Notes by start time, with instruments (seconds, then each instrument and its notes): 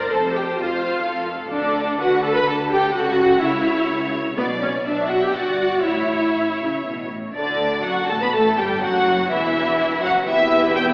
Already playing: viola section A#4
0.10 double bass section F1, cello section F2, viola section A4, violin section C5 A5
0.34 viola section G4, violin section G5
0.57 double bass section F1, cello section F2, viola section F4, violin section F5
1.04 double bass section F1, cello section F2, violin section A4
1.51 double bass section D2, cello section D3, viola section D4, violin section D5
1.99 double bass section D2, cello section D3, viola section F#4, violin section B4 F#5
2.23 viola section A4, violin section A5
2.35 viola section B4, violin section B5
2.47 double bass section D2, cello section D3, viola section A4, violin section A4 A5
2.70 viola section G4, violin section G5
2.95 double bass section C#2, cello section C#3, viola section F#4, violin section F#5
3.41 double bass section C#2, cello section C#3, viola section E4, violin section C#5 E5
3.90 double bass section C#2, cello section C#3
4.37 double bass section B1, cello section B2, viola section B3, violin section B4 D5
4.62 viola section C#4, violin section C#5
4.85 double bass section B1, cello section B2, viola section D4, violin section D5 E5
5.10 viola section F#4, violin section F#5
5.23 viola section G4, violin section G5
5.35 double bass section G1, cello section G2, viola section F#4, violin section D5 F#5
5.84 double bass section A1, cello section A2, viola section E4, violin section C#5 E5
6.35 double bass section A1, cello section A2
6.60 cello section C#3
6.86 double bass section A1, cello section B2
7.11 cello section A2
7.36 cello section D2, double bass section D2, viola section D3, violin section D4 D5
7.85 double bass section F#1, cello section F#2, viola section F#3, violin section F#4 F#5
8.08 double bass section A1, cello section A2, viola section A3, violin section A4 A5
8.22 cello section B2, viola section B3, violin section B4 B5
8.33 double bass section A1, cello section A2, viola section A3, violin section A4 A5
8.58 double bass section G1, cello section G2, viola section G3, violin section G4 G5
8.82 double bass section F#1, cello section F#2, viola section F#3, violin section F#4 F#5
9.30 double bass section E1, cello section E2, viola section E3, violin section E4 E5
10.03 double bass section F#1, cello section F#2, viola section F#3, violin section F#4 F#5
10.26 double bass section E1, cello section E2, viola section B3 E4, violin section G4 B4 E5
10.75 violin section G5